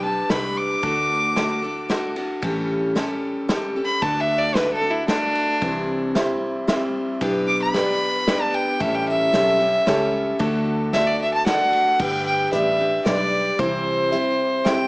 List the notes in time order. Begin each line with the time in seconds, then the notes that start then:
Already playing: B1
0.03 D4 G4 B4 A5
0.29 C2 G3 D4 G4 B4 B5, snare, ride
0.57 D6
0.82 D2 D3 A3 D4 F#4 A4, kick, ride
1.36 A3 D4 F#4 A4, snare, ride
1.62 D4 F#4 A4
1.89 A3 D4 F#4 A4, snare, ride
2.16 D4 F#4 A4, ride
2.42 A1 A2 E3 G3 C#4 G4 A4, kick, ride
2.95 G3 C#4 G4 A4, snare, ride
3.48 G3 C#4 G4 A4, snare, ride
3.76 G3 C#4 G4 A4
3.85 B5
4.02 D2 D3 A3 D4 F#4 A4 A5, kick, ride
4.20 E5
4.39 D5
4.55 A3 D4 F#4 A4 B4, snare, ride
4.73 A4
4.81 D4 F#4 A4
4.91 E4
5.08 A3 D4 F#4 A4, snare, ride
5.35 ride
5.61 C2 C3 E3 G3 C4 E4 C5, kick, ride
6.15 G3 C4 E4 G4 C5 E5, snare, ride
6.67 G3 C4 E4 G4 C5 E5, snare, ride
7.21 B1 B3 D4 G4 B4, kick, ride
7.48 D6
7.62 B5
7.74 B3 D4 G4 B4 D5, snare, ride
8.27 B3 D4 G4 B4 D5, snare, ride
8.41 A5
8.54 G5, ride
8.80 A1 A2 E3 G3 C#4 G4 A4 E5, kick, ride
8.95 G5
9.09 E5
9.33 B1 G3 C#4 G4 A4 C#5, snare, ride
9.59 G3 C#4 G4 A4
9.86 C#2 G3 C#4 G4 A4 C#5, snare, ride
10.39 D2 D3 A3 D4 F#4 A4, kick, ride
10.93 A3 D4 F#4 A4 D5 E5, snare, ride
11.07 D5
11.22 E5
11.34 A5
11.46 A3 D4 F#4 A4 D5 F#5, snare, ride
11.73 ride
12.00 G1 G3 D4 G4 B4 G5, kick, crash
12.26 G5
12.52 A1 G3 D4 G4 B4 D5 E5, closed hi-hat
12.78 D4 G4 B4
13.05 B1 G3 D4 G4 B4 D5, snare, closed hi-hat
13.59 C2 C3 E3 G3 C4 E4 C5, kick, closed hi-hat
14.11 G3 C4 E4 G4 C5 E5, closed hi-hat
14.64 G3 C4 E4 G4 C5 E5 G5, snare, closed hi-hat